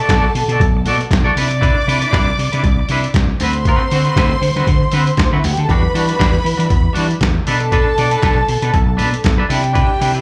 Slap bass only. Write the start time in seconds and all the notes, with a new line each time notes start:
0.10 B1
0.35 B2
0.48 B2
0.60 B1
0.85 B2
1.11 B1
1.36 C3
1.88 C3
2.13 C2
2.39 C3
2.54 C3
2.63 C2
2.89 C3
3.14 C2
3.40 D2
3.92 D3
4.17 D2
4.42 D3
4.56 D3
4.67 D3
4.93 D3
5.18 D2
5.32 D3
5.44 D2
5.58 D3
5.69 E2
5.95 E3
6.20 E2
6.44 E3
6.59 E3
6.70 E2
6.97 E3
7.21 E2
7.48 B2
7.98 B2
8.23 B1
8.49 B2
8.62 B2
8.74 B1
8.99 B2
9.25 B1
9.50 C3
10.01 C3